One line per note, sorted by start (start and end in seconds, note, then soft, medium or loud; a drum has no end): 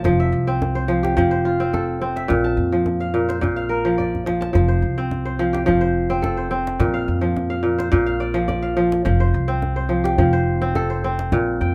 0.00 0.59 D5 medium
0.00 0.79 A5 medium
0.04 0.31 F1 loud
0.04 0.87 F3 medium
0.04 djembe slap soft
0.04 djembe bass medium
0.20 0.94 E5 medium
0.32 1.18 C2 medium
0.47 1.60 C4 medium
0.62 djembe tone medium
0.75 1.31 C5 medium
0.88 1.16 F3 medium
1.03 2.44 G4 medium
1.03 djembe slap soft
1.17 2.25 F1 medium
1.17 2.35 F3 loud
1.17 djembe bass medium
1.31 2.50 C5 medium
1.31 djembe slap soft
1.45 2.22 F4 medium
1.60 2.01 C4 medium
1.73 2.34 A4 medium
1.73 djembe slap soft
1.73 djembe tone medium
2.01 3.81 C4 medium
2.16 2.78 E5 medium
2.16 djembe slap soft
2.28 2.56 A#1 loud
2.28 3.13 A#2 medium
2.28 djembe bass medium
2.44 3.20 A5 medium
2.57 3.44 F2 medium
2.57 djembe slap soft
2.72 3.84 F3 medium
2.86 djembe tone medium
3.00 3.56 F5 medium
3.14 3.40 A#2 medium
3.14 djembe slap soft
3.29 4.47 C5 medium
3.29 djembe slap soft
3.41 4.51 A#1 medium
3.41 4.59 A#2 medium
3.41 djembe bass medium
3.56 4.56 F5 medium
3.69 4.47 A#4 medium
3.85 4.25 F3 medium
3.98 5.09 D5 medium
3.98 djembe bass soft
4.15 djembe bass soft
4.26 4.52 F3 medium
4.26 djembe slap medium
4.41 5.28 A5 medium
4.41 djembe slap medium
4.53 4.81 F1 loud
4.53 5.38 F3 medium
4.53 djembe slap soft
4.53 djembe bass medium
4.68 5.25 C5 medium
4.82 5.69 C2 medium
4.98 6.09 C4 medium
5.11 djembe tone medium
5.25 5.81 C5 medium
5.39 5.65 F3 medium
5.53 6.94 G4 medium
5.53 djembe slap medium
5.66 6.76 F1 medium
5.66 6.84 F3 loud
5.66 djembe bass medium
5.81 6.37 C5 medium
6.10 6.50 C4 medium
6.22 6.85 A4 medium
6.22 djembe slap soft
6.22 djembe tone medium
6.37 7.56 C5 medium
6.51 8.31 C4 medium
6.67 djembe slap medium
6.79 7.06 A#1 loud
6.79 7.62 A#2 medium
6.79 djembe slap soft
6.79 djembe bass medium
6.94 7.50 F5 medium
7.08 7.94 F2 medium
7.21 8.33 F3 medium
7.37 djembe tone medium
7.50 8.06 F5 medium
7.63 7.90 A#2 medium
7.78 8.97 C5 medium
7.78 djembe slap medium
7.92 9.01 A#1 medium
7.92 9.10 A#2 loud
7.92 djembe bass medium
8.06 8.62 F5 medium
8.06 djembe slap soft
8.20 8.47 D5 medium
8.34 8.75 F3 medium
8.48 9.59 D5 medium
8.48 djembe slap soft
8.48 djembe tone medium
8.62 9.62 F5 medium
8.77 9.04 F3 medium
8.92 djembe slap medium
9.05 9.32 F1 loud
9.05 9.88 F3 medium
9.05 djembe slap soft
9.05 djembe bass medium
9.20 9.76 C5 medium
9.34 10.20 C2 loud
9.48 10.61 C4 medium
9.62 djembe tone medium
9.76 10.32 C5 medium
9.89 10.17 F3 medium
10.04 11.45 G4 medium
10.04 djembe slap medium
10.18 11.28 F1 loud
10.18 11.37 F3 medium
10.18 djembe bass medium
10.33 10.89 C5 medium
10.33 djembe slap soft
10.62 11.04 C4 medium
10.75 11.39 A4 medium
10.75 djembe slap soft
10.75 djembe tone medium
10.90 11.75 C5 medium
11.04 11.75 C4 medium
11.19 djembe slap medium
11.32 11.59 A#1 loud
11.32 11.75 A#2 medium
11.32 djembe bass medium
11.61 11.75 F2 medium
11.61 11.75 G5 medium
11.61 djembe slap soft